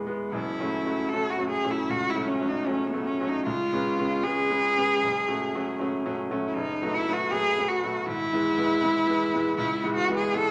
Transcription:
Already playing: grand piano E2 G#3 B3
0.07 grand piano G#3 B3
0.32 grand piano F#1 F#2, cello E4
0.60 grand piano F#3 A3 C#4
0.86 grand piano F#3 A3 C#4
1.09 grand piano F#3 A3, cello A4
1.14 grand piano C#4
1.30 cello F#4
1.38 grand piano F#3 A3 C#4
1.50 cello G#4
1.64 grand piano F#3 A3 C#4
1.71 cello E4
1.89 grand piano C#2, cello F#4
2.10 cello E4
2.15 grand piano F#3 A3 C#4
2.28 cello C#4
2.41 grand piano F#3 A3 C#4
2.49 cello D#4
2.66 grand piano F#3 A3 C#4, cello C#4
2.87 cello B3
2.93 grand piano F#3 A3 C#4
3.07 cello C#4
3.20 grand piano F#3 A3 C#4
3.29 cello D#4
3.46 grand piano C#2, cello F4
3.73 grand piano G#3 B3 C#4
3.99 grand piano G#3 B3 C#4
4.24 grand piano G#3 B3 C#4, cello G#4
4.50 grand piano G#3 B3 C#4
4.77 grand piano G#3 B3 C#4
5.03 grand piano F#1
5.28 grand piano F#3 A3 C#4
5.55 grand piano F#3 A3 C#4
5.79 grand piano F#3 A3 C#4
6.06 grand piano F#3 A3 C#4
6.31 grand piano F#3 A3 C#4
6.47 cello E4
6.53 grand piano F#1, cello D#4
6.82 grand piano F#3 A3 B3
6.94 cello E4
7.08 grand piano F#3 A3 B3
7.13 cello F#4
7.31 grand piano F#3 A3 B3, cello G#4
7.58 grand piano F#3 A3 B3
7.68 cello F#4
7.84 grand piano F#3 A3 B3
8.07 grand piano G#1, cello E4
8.33 grand piano E3 G#3 B3
8.57 grand piano E3 G#3 B3
8.82 grand piano E3 G#3 B3
9.07 grand piano E3 G#3 B3
9.34 grand piano E3 G#3 B3
9.57 grand piano C#2, cello E4
9.84 grand piano E3 G#3 B3
9.95 cello F#4
10.09 grand piano E3 G#3 B3
10.17 cello G#4
10.34 grand piano E3 G#3 B3, cello A4

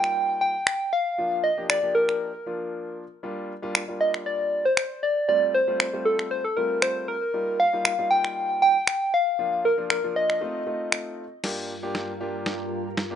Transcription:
Already playing: grand piano G3 A#3 D#4 F4, soft synth lead G5
0.04 finger snap
0.41 soft synth lead G5
0.67 finger snap
0.93 soft synth lead F5
1.18 grand piano F3 A#3 D4 F4
1.44 soft synth lead D#5
1.57 grand piano F3 A#3 D4 G4
1.70 soft synth lead D5, finger snap
1.83 grand piano F3 A#3 D4 G4
1.95 soft synth lead A#4
2.09 finger snap
2.46 grand piano F3 A#3 D4 F4
3.23 grand piano G3 A#3 D4 F4
3.62 grand piano G3 A#3 D4 F4
3.75 finger snap
3.88 grand piano G3 A#3 D4 F4
4.01 soft synth lead D#5
4.14 finger snap
4.26 soft synth lead D5
4.65 soft synth lead C5
4.77 finger snap
5.03 soft synth lead D5
5.28 grand piano G3 A3 C4 F4, soft synth lead D5
5.54 soft synth lead C5
5.68 grand piano G3 A3 C4 F4
5.80 finger snap
5.93 grand piano G3 A3 C4 F4
6.05 soft synth lead A4
6.19 finger snap
6.31 soft synth lead C5
6.45 soft synth lead A4
6.57 grand piano G3 A3 C4 F4, soft synth lead A#4
6.82 soft synth lead C5, finger snap
7.08 soft synth lead A#4
7.34 grand piano G3 A#3 D#4 F4
7.60 soft synth lead F5
7.73 grand piano G3 A#3 D#4 F4
7.85 finger snap
7.99 grand piano G3 A#3 D#4 F4
8.11 soft synth lead G5
8.25 finger snap
8.62 soft synth lead G5
8.87 finger snap
9.14 soft synth lead F5
9.39 grand piano F3 A#3 D4 F4
9.65 soft synth lead A#4
9.78 grand piano F3 A#3 D4 F4
9.90 soft synth lead A#4, finger snap
10.04 grand piano F3 A#3 D4 F4
10.16 soft synth lead D#5
10.30 finger snap
10.41 grand piano A3 C4 D#4 F4
10.67 grand piano A3 C4 D#4 F4
10.92 finger snap
11.43 string machine G2 G3 F4 A#4, grand piano A#3 D4 F4 G4, snare, crash
11.83 grand piano A#3 D4 F4 G4
11.95 snare
12.20 grand piano A#3 D4 F4 G4
12.46 snare
12.97 snare
13.11 grand piano A#3 D4 F4 G4

